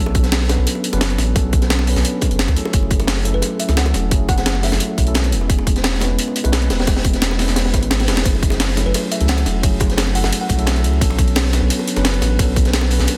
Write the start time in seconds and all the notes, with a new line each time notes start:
Already playing: B1 F#3 B3 C#4
0.00 D4 A4
0.06 high bongo
0.15 kick, closed hi-hat
0.23 snare, closed hi-hat
0.32 snare, closed hi-hat, open hi-hat, high bongo
0.41 snare
0.48 F#3 B3 C#4 D4 B4, snare, closed hi-hat, high bongo
0.58 B1
0.67 closed hi-hat
0.75 high bongo
0.84 closed hi-hat
0.92 F#1 F#3 B3 C#4 D4 B4, closed hi-hat, high bongo
1.00 F#3 C#4 D4, snare, closed hi-hat
1.10 closed hi-hat
1.18 A1, snare, closed hi-hat, high bongo
1.34 B1 F#3 B3 C#4 D4 A4, kick, closed hi-hat, high bongo
1.53 kick, closed hi-hat
1.62 snare, closed hi-hat, high bongo
1.70 snare, closed hi-hat
1.79 snare, high bongo
1.86 F#3 B3 C#4 D4 B4, closed hi-hat, open hi-hat
1.96 B1, snare, closed hi-hat
2.04 closed hi-hat, high bongo
2.21 kick, closed hi-hat, high bongo
2.31 F#1, closed hi-hat
2.39 F#1, snare, closed hi-hat
2.48 D2, kick, snare, closed hi-hat, high bongo
2.55 F#3 A3 C#4 E4 A4, closed hi-hat
2.65 high bongo
2.72 F#1 F#3 A3 C#4 E4 G#4, kick, closed hi-hat
2.83 high bongo
2.91 kick, closed hi-hat
3.00 closed hi-hat, high bongo
3.07 snare, closed hi-hat, open hi-hat
3.17 snare
3.23 F#3 A3 C#4 E4 A4, closed hi-hat, high bongo
3.34 F#1 B4
3.42 closed hi-hat, high bongo
3.59 E5, closed hi-hat
3.68 C#2 F#3 A3 C#4 E4 A4, snare, closed hi-hat, high bongo
3.76 F#3 A3 C#4 E4 A4 F#5, snare, closed hi-hat
3.86 closed hi-hat, high bongo
3.94 E1, snare, closed hi-hat
4.10 F#1 F#3 A3 C#4 E4 G#4, kick, closed hi-hat, high bongo
4.29 F#5, kick, closed hi-hat, high bongo
4.37 F#5, snare, closed hi-hat
4.46 F#5, snare, closed hi-hat
4.54 snare, high bongo
4.62 F#3 A3 C#4 E4 A4 E5, snare, closed hi-hat, open hi-hat
4.72 F#1, snare, closed hi-hat, high bongo
4.80 closed hi-hat
4.98 B1, kick, closed hi-hat, high bongo
5.06 F#3 A3 C#4 E4 A4, closed hi-hat
5.14 G#3 B3 C#4 E4 B4, snare, closed hi-hat, high bongo
5.24 snare, closed hi-hat
5.32 E1, closed hi-hat
5.41 high bongo
5.48 E1 G#3 B3 C#4 E4 G#4, kick, closed hi-hat
5.58 high bongo
5.67 kick, closed hi-hat
5.76 snare, closed hi-hat
5.84 snare, closed hi-hat, open hi-hat, high bongo
5.93 snare
5.99 G#3 B3 C#4 E4 B4, snare, closed hi-hat, high bongo
6.10 E1
6.19 closed hi-hat
6.28 high bongo
6.36 closed hi-hat
6.44 B1 G#3 B3 C#4 E4 B4, closed hi-hat, high bongo
6.52 G#3 B3 C#4 E4 B4, snare, closed hi-hat
6.62 closed hi-hat
6.70 E1, snare, closed hi-hat, open hi-hat, high bongo
6.79 snare, open hi-hat
6.86 E1 G#3 B3 C#4 E4 G#4, kick, snare, closed hi-hat, open hi-hat, high bongo
6.96 snare, open hi-hat
7.05 kick, closed hi-hat
7.13 snare, closed hi-hat, high bongo
7.22 snare, closed hi-hat
7.31 snare, high bongo
7.38 G#3 B3 C#4 E4 B4, snare, closed hi-hat, open hi-hat
7.48 E1, snare, closed hi-hat
7.56 snare, closed hi-hat, open hi-hat, high bongo
7.65 snare
7.74 G#1, kick, snare, closed hi-hat, high bongo
7.83 closed hi-hat
7.91 G#1, snare, closed hi-hat, open hi-hat
8.00 snare, closed hi-hat, open hi-hat, high bongo
8.07 E1 G#3 B3 C#4 E4 B4, snare, closed hi-hat, open hi-hat
8.17 snare, open hi-hat, high bongo
8.21 F#3 A3, snare, open hi-hat
8.25 F#1 C#4 E4 G#4, kick, closed hi-hat, ride
8.35 high bongo
8.43 kick, closed hi-hat
8.50 snare, closed hi-hat, high bongo
8.60 snare, closed hi-hat, open hi-hat, ride
8.69 snare
8.75 F#3 A3 C#4 E4 A4, snare, closed hi-hat, high bongo
8.86 F#1 B4
8.94 closed hi-hat, ride, high bongo
9.11 E5, closed hi-hat
9.19 C#2 F#3 A3 C#4 E4 A4, closed hi-hat, high bongo
9.28 F#3 A3 C#4 E4 F#5, snare, closed hi-hat, ride
9.38 closed hi-hat, high bongo
9.46 E1, snare, closed hi-hat
9.61 F#1 F#3 A3 C#4 E4 G#4, kick, closed hi-hat, ride, high bongo
9.80 kick, closed hi-hat, high bongo
9.90 snare, closed hi-hat
9.98 snare, closed hi-hat, ride
10.07 snare, high bongo
10.13 F#3 A3 C#4 E4 A4 F#5, closed hi-hat, open hi-hat
10.24 F#1 F#5, snare, closed hi-hat, high bongo
10.33 closed hi-hat, ride
10.41 F#5
10.49 B1, kick, closed hi-hat, high bongo
10.58 F#3 A3 C#4 E4 A4, closed hi-hat
10.66 F#3 A3 C#4, snare, closed hi-hat, ride, high bongo
10.75 snare, closed hi-hat
10.84 C#2, closed hi-hat
10.93 high bongo
11.00 B1 F#3 B3 C#4 D4 A4, kick, closed hi-hat, ride
11.10 high bongo
11.19 kick, closed hi-hat
11.28 closed hi-hat
11.35 snare, closed hi-hat, open hi-hat, ride, high bongo
11.45 snare
11.51 F#3 B3 C#4 D4 B4, snare, closed hi-hat, high bongo
11.62 B1
11.70 closed hi-hat, ride
11.79 high bongo
11.88 closed hi-hat
11.96 F#1 F#3 B3 C#4 D4 B4, snare, closed hi-hat, high bongo
12.04 F#3 B3 C#4 D4 B4, snare, closed hi-hat, ride
12.14 closed hi-hat
12.22 A1, snare, closed hi-hat, high bongo
12.37 B1 F#3 B3 C#4 D4 A4, kick, closed hi-hat, ride, high bongo
12.56 kick, closed hi-hat
12.65 snare, closed hi-hat, high bongo
12.74 snare, closed hi-hat, ride
12.81 snare, high bongo
12.89 F#3 B3 C#4 D4 B4, closed hi-hat, open hi-hat
12.99 B1, snare, closed hi-hat
13.07 closed hi-hat, ride, high bongo